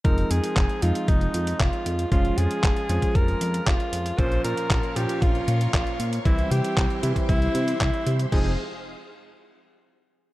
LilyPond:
<<
  \new Staff \with { instrumentName = "String machine" } { \time 4/4 \key f \minor \tempo 4 = 116 r1 | r1 | <bes' des'' f'' des'''>1 | <g' c'' e'' c'''>1 |
<aes' c'' ees'' f'' c'''>8 r2. r8 | }
  \new Staff \with { instrumentName = "Alto saxophone" } { \time 4/4 \key f \minor bes'8 aes'4 f'8 ees'4 f'4 | f'8 aes'4. bes'4 f'4 | c''8 bes'4 g'8 f'4 f'4 | e'8 g'4 r8 e'4 e'8. r16 |
aes'8 r2. r8 | }
  \new Staff \with { instrumentName = "Electric grand piano" } { \time 4/4 \key f \minor <f aes c' ees'>4. <f aes c' ees'>2~ <f aes c' ees'>8 | <f aes des' f'>4. <f aes des' f'>2~ <f aes des' f'>8 | <bes, f bes des' f'>4. <bes, f bes des' f'>2~ <bes, f bes des' f'>8 | <e g c' e'>4. <e g c' e'>2~ <e g c' e'>8 |
<f aes c' ees'>8 r2. r8 | }
  \new Staff \with { instrumentName = "Analog synth bass" } { \clef bass \time 4/4 \key f \minor f,,8 f,8 f,,8 f,8 f,,8 f,8 f,,8 f,8 | f,,8 f,8 f,,8 f,8 f,,8 f,8 f,,8 f,8 | bes,,8 bes,8 bes,,8 bes,8 bes,,8 bes,8 bes,,8 bes,8 | c,8 c8 c,8 c8 c,8 c8 c,8 c8 |
f,,8 r2. r8 | }
  \new DrumStaff \with { instrumentName = "Drums" } \drummode { \time 4/4 <hh bd>16 hh16 hh16 hh16 <hc hh bd>16 hh16 hh16 hh16 <hh bd>16 hh16 hh16 hh16 <hc hh bd>16 hh16 hh16 hh16 | <hh bd>16 hh16 hh16 hh16 <hc hh bd>16 hh16 hh16 <hh bd>16 <hh bd>16 hh16 hh16 hh16 <hc hh bd>16 hh16 hh16 hh16 | <hh bd>16 hh16 hh16 hh16 <hc hh bd>16 hh16 hh16 hh16 <hh bd>16 hh16 hh16 hh16 <hc hh bd>16 hh16 hh16 hh16 | <hh bd>16 hh16 hh16 hh16 <hc hh bd>16 hh16 hh16 <hh bd>16 <hh bd>16 hh16 hh16 hh16 <hc hh bd>16 hh16 hh16 hh16 |
<cymc bd>4 r4 r4 r4 | }
>>